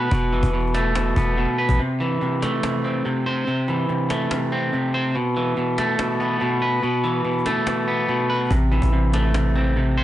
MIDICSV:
0, 0, Header, 1, 4, 480
1, 0, Start_track
1, 0, Key_signature, 0, "minor"
1, 0, Tempo, 419580
1, 132, Time_signature, 4, 2, 24, 8
1, 11483, End_track
2, 0, Start_track
2, 0, Title_t, "Clean electric guitar"
2, 0, Program_c, 0, 27
2, 0, Note_on_c, 0, 47, 96
2, 0, Note_on_c, 0, 57, 98
2, 0, Note_on_c, 0, 59, 78
2, 0, Note_on_c, 0, 71, 83
2, 120, Note_off_c, 0, 47, 0
2, 131, Note_off_c, 0, 57, 0
2, 133, Note_on_c, 0, 47, 91
2, 372, Note_on_c, 0, 52, 84
2, 597, Note_off_c, 0, 47, 0
2, 611, Note_on_c, 0, 47, 73
2, 612, Note_off_c, 0, 59, 0
2, 850, Note_on_c, 0, 57, 98
2, 1077, Note_off_c, 0, 47, 0
2, 1091, Note_on_c, 0, 47, 67
2, 1092, Note_off_c, 0, 71, 0
2, 1332, Note_on_c, 0, 59, 74
2, 1559, Note_off_c, 0, 47, 0
2, 1572, Note_off_c, 0, 52, 0
2, 1573, Note_on_c, 0, 47, 94
2, 1811, Note_on_c, 0, 71, 86
2, 2051, Note_off_c, 0, 57, 0
2, 2051, Note_off_c, 0, 59, 0
2, 2051, Note_off_c, 0, 71, 0
2, 2051, Note_on_c, 0, 48, 84
2, 2052, Note_off_c, 0, 47, 0
2, 2290, Note_on_c, 0, 52, 83
2, 2517, Note_off_c, 0, 48, 0
2, 2531, Note_on_c, 0, 48, 73
2, 2772, Note_on_c, 0, 57, 97
2, 2998, Note_off_c, 0, 48, 0
2, 3011, Note_on_c, 0, 48, 70
2, 3252, Note_on_c, 0, 60, 72
2, 3477, Note_off_c, 0, 48, 0
2, 3490, Note_off_c, 0, 52, 0
2, 3491, Note_on_c, 0, 48, 94
2, 3732, Note_on_c, 0, 72, 94
2, 3958, Note_off_c, 0, 48, 0
2, 3972, Note_off_c, 0, 57, 0
2, 3972, Note_on_c, 0, 48, 85
2, 4212, Note_on_c, 0, 52, 82
2, 4438, Note_off_c, 0, 48, 0
2, 4452, Note_off_c, 0, 60, 0
2, 4452, Note_on_c, 0, 48, 73
2, 4693, Note_on_c, 0, 57, 96
2, 4919, Note_off_c, 0, 48, 0
2, 4932, Note_off_c, 0, 72, 0
2, 4932, Note_on_c, 0, 48, 71
2, 5172, Note_on_c, 0, 60, 87
2, 5399, Note_off_c, 0, 48, 0
2, 5412, Note_off_c, 0, 52, 0
2, 5413, Note_on_c, 0, 48, 82
2, 5653, Note_on_c, 0, 72, 83
2, 5892, Note_off_c, 0, 48, 0
2, 5892, Note_off_c, 0, 57, 0
2, 5892, Note_off_c, 0, 60, 0
2, 5892, Note_off_c, 0, 72, 0
2, 5892, Note_on_c, 0, 47, 85
2, 6134, Note_on_c, 0, 52, 75
2, 6359, Note_off_c, 0, 47, 0
2, 6372, Note_on_c, 0, 47, 72
2, 6612, Note_on_c, 0, 57, 98
2, 6837, Note_off_c, 0, 47, 0
2, 6851, Note_on_c, 0, 47, 74
2, 7093, Note_on_c, 0, 59, 82
2, 7317, Note_off_c, 0, 47, 0
2, 7331, Note_on_c, 0, 47, 96
2, 7332, Note_off_c, 0, 52, 0
2, 7571, Note_on_c, 0, 71, 82
2, 7798, Note_off_c, 0, 47, 0
2, 7811, Note_on_c, 0, 47, 94
2, 7812, Note_off_c, 0, 57, 0
2, 8050, Note_on_c, 0, 52, 82
2, 8275, Note_off_c, 0, 47, 0
2, 8289, Note_on_c, 0, 47, 75
2, 8292, Note_off_c, 0, 59, 0
2, 8530, Note_on_c, 0, 57, 96
2, 8757, Note_off_c, 0, 47, 0
2, 8771, Note_off_c, 0, 71, 0
2, 8771, Note_on_c, 0, 47, 68
2, 9010, Note_on_c, 0, 59, 77
2, 9235, Note_off_c, 0, 47, 0
2, 9249, Note_on_c, 0, 47, 94
2, 9251, Note_off_c, 0, 52, 0
2, 9490, Note_on_c, 0, 71, 87
2, 9730, Note_off_c, 0, 47, 0
2, 9731, Note_off_c, 0, 57, 0
2, 9731, Note_off_c, 0, 59, 0
2, 9731, Note_off_c, 0, 71, 0
2, 9731, Note_on_c, 0, 48, 85
2, 9970, Note_on_c, 0, 52, 80
2, 10196, Note_off_c, 0, 48, 0
2, 10210, Note_on_c, 0, 48, 70
2, 10451, Note_on_c, 0, 57, 93
2, 10676, Note_off_c, 0, 48, 0
2, 10690, Note_on_c, 0, 48, 68
2, 10931, Note_on_c, 0, 60, 73
2, 11157, Note_off_c, 0, 48, 0
2, 11171, Note_off_c, 0, 52, 0
2, 11171, Note_on_c, 0, 48, 94
2, 11411, Note_on_c, 0, 72, 89
2, 11483, Note_off_c, 0, 48, 0
2, 11483, Note_off_c, 0, 57, 0
2, 11483, Note_off_c, 0, 60, 0
2, 11483, Note_off_c, 0, 72, 0
2, 11483, End_track
3, 0, Start_track
3, 0, Title_t, "808-style bass"
3, 0, Program_c, 1, 38
3, 131, Note_on_c, 1, 28, 107
3, 371, Note_on_c, 1, 29, 101
3, 388, Note_off_c, 1, 28, 0
3, 485, Note_off_c, 1, 29, 0
3, 490, Note_on_c, 1, 28, 105
3, 1297, Note_off_c, 1, 28, 0
3, 1330, Note_on_c, 1, 28, 105
3, 1676, Note_off_c, 1, 28, 0
3, 1932, Note_on_c, 1, 33, 109
3, 2051, Note_off_c, 1, 33, 0
3, 9731, Note_on_c, 1, 33, 110
3, 10077, Note_off_c, 1, 33, 0
3, 10090, Note_on_c, 1, 33, 102
3, 11483, Note_off_c, 1, 33, 0
3, 11483, End_track
4, 0, Start_track
4, 0, Title_t, "Cajon"
4, 131, Note_on_c, 9, 36, 109
4, 245, Note_off_c, 9, 36, 0
4, 370, Note_on_c, 9, 38, 50
4, 484, Note_off_c, 9, 38, 0
4, 491, Note_on_c, 9, 36, 96
4, 605, Note_off_c, 9, 36, 0
4, 692, Note_on_c, 9, 38, 38
4, 772, Note_off_c, 9, 38, 0
4, 772, Note_on_c, 9, 38, 47
4, 853, Note_off_c, 9, 38, 0
4, 853, Note_on_c, 9, 38, 92
4, 858, Note_off_c, 9, 38, 0
4, 858, Note_on_c, 9, 38, 75
4, 972, Note_off_c, 9, 38, 0
4, 1092, Note_on_c, 9, 38, 114
4, 1097, Note_off_c, 9, 38, 0
4, 1097, Note_on_c, 9, 38, 91
4, 1212, Note_off_c, 9, 38, 0
4, 1331, Note_on_c, 9, 36, 95
4, 1445, Note_off_c, 9, 36, 0
4, 1572, Note_on_c, 9, 38, 42
4, 1686, Note_off_c, 9, 38, 0
4, 1812, Note_on_c, 9, 38, 35
4, 1871, Note_off_c, 9, 38, 0
4, 1871, Note_on_c, 9, 38, 35
4, 1931, Note_on_c, 9, 36, 98
4, 1985, Note_off_c, 9, 38, 0
4, 1991, Note_on_c, 9, 38, 33
4, 2046, Note_off_c, 9, 36, 0
4, 2106, Note_off_c, 9, 38, 0
4, 2292, Note_on_c, 9, 38, 49
4, 2407, Note_off_c, 9, 38, 0
4, 2533, Note_on_c, 9, 38, 45
4, 2647, Note_off_c, 9, 38, 0
4, 2774, Note_on_c, 9, 38, 92
4, 2779, Note_off_c, 9, 38, 0
4, 2779, Note_on_c, 9, 38, 72
4, 2893, Note_off_c, 9, 38, 0
4, 3013, Note_on_c, 9, 38, 118
4, 3018, Note_off_c, 9, 38, 0
4, 3018, Note_on_c, 9, 38, 92
4, 3133, Note_off_c, 9, 38, 0
4, 3254, Note_on_c, 9, 38, 49
4, 3368, Note_off_c, 9, 38, 0
4, 3493, Note_on_c, 9, 38, 43
4, 3607, Note_off_c, 9, 38, 0
4, 3733, Note_on_c, 9, 38, 41
4, 3847, Note_off_c, 9, 38, 0
4, 3972, Note_on_c, 9, 38, 47
4, 4086, Note_off_c, 9, 38, 0
4, 4211, Note_on_c, 9, 38, 52
4, 4325, Note_off_c, 9, 38, 0
4, 4452, Note_on_c, 9, 38, 45
4, 4566, Note_off_c, 9, 38, 0
4, 4692, Note_on_c, 9, 38, 94
4, 4698, Note_off_c, 9, 38, 0
4, 4698, Note_on_c, 9, 38, 75
4, 4812, Note_off_c, 9, 38, 0
4, 4931, Note_on_c, 9, 38, 111
4, 4936, Note_off_c, 9, 38, 0
4, 4936, Note_on_c, 9, 38, 91
4, 5051, Note_off_c, 9, 38, 0
4, 5172, Note_on_c, 9, 38, 50
4, 5286, Note_off_c, 9, 38, 0
4, 5411, Note_on_c, 9, 38, 44
4, 5526, Note_off_c, 9, 38, 0
4, 5651, Note_on_c, 9, 38, 42
4, 5766, Note_off_c, 9, 38, 0
4, 5891, Note_on_c, 9, 38, 48
4, 6006, Note_off_c, 9, 38, 0
4, 6132, Note_on_c, 9, 38, 51
4, 6247, Note_off_c, 9, 38, 0
4, 6372, Note_on_c, 9, 38, 45
4, 6487, Note_off_c, 9, 38, 0
4, 6613, Note_on_c, 9, 38, 93
4, 6618, Note_off_c, 9, 38, 0
4, 6618, Note_on_c, 9, 38, 74
4, 6733, Note_off_c, 9, 38, 0
4, 6852, Note_on_c, 9, 38, 113
4, 6857, Note_off_c, 9, 38, 0
4, 6857, Note_on_c, 9, 38, 93
4, 6972, Note_off_c, 9, 38, 0
4, 7092, Note_on_c, 9, 38, 49
4, 7206, Note_off_c, 9, 38, 0
4, 7332, Note_on_c, 9, 38, 43
4, 7446, Note_off_c, 9, 38, 0
4, 7572, Note_on_c, 9, 38, 41
4, 7686, Note_off_c, 9, 38, 0
4, 7812, Note_on_c, 9, 38, 46
4, 7927, Note_off_c, 9, 38, 0
4, 8052, Note_on_c, 9, 38, 52
4, 8166, Note_off_c, 9, 38, 0
4, 8292, Note_on_c, 9, 38, 27
4, 8372, Note_off_c, 9, 38, 0
4, 8372, Note_on_c, 9, 38, 36
4, 8451, Note_off_c, 9, 38, 0
4, 8451, Note_on_c, 9, 38, 49
4, 8533, Note_off_c, 9, 38, 0
4, 8533, Note_on_c, 9, 38, 91
4, 8538, Note_off_c, 9, 38, 0
4, 8538, Note_on_c, 9, 38, 73
4, 8652, Note_off_c, 9, 38, 0
4, 8771, Note_on_c, 9, 38, 111
4, 8777, Note_off_c, 9, 38, 0
4, 8777, Note_on_c, 9, 38, 88
4, 8891, Note_off_c, 9, 38, 0
4, 9012, Note_on_c, 9, 38, 49
4, 9126, Note_off_c, 9, 38, 0
4, 9251, Note_on_c, 9, 38, 41
4, 9366, Note_off_c, 9, 38, 0
4, 9492, Note_on_c, 9, 38, 34
4, 9551, Note_off_c, 9, 38, 0
4, 9551, Note_on_c, 9, 38, 36
4, 9611, Note_off_c, 9, 38, 0
4, 9611, Note_on_c, 9, 38, 34
4, 9672, Note_off_c, 9, 38, 0
4, 9672, Note_on_c, 9, 38, 35
4, 9731, Note_on_c, 9, 36, 108
4, 9786, Note_off_c, 9, 38, 0
4, 9845, Note_off_c, 9, 36, 0
4, 9970, Note_on_c, 9, 38, 52
4, 10085, Note_off_c, 9, 38, 0
4, 10090, Note_on_c, 9, 36, 97
4, 10205, Note_off_c, 9, 36, 0
4, 10451, Note_on_c, 9, 38, 94
4, 10457, Note_off_c, 9, 38, 0
4, 10457, Note_on_c, 9, 38, 75
4, 10571, Note_off_c, 9, 38, 0
4, 10690, Note_on_c, 9, 38, 112
4, 10695, Note_off_c, 9, 38, 0
4, 10695, Note_on_c, 9, 38, 92
4, 10810, Note_off_c, 9, 38, 0
4, 10930, Note_on_c, 9, 38, 48
4, 11045, Note_off_c, 9, 38, 0
4, 11170, Note_on_c, 9, 38, 42
4, 11285, Note_off_c, 9, 38, 0
4, 11410, Note_on_c, 9, 38, 41
4, 11483, Note_off_c, 9, 38, 0
4, 11483, End_track
0, 0, End_of_file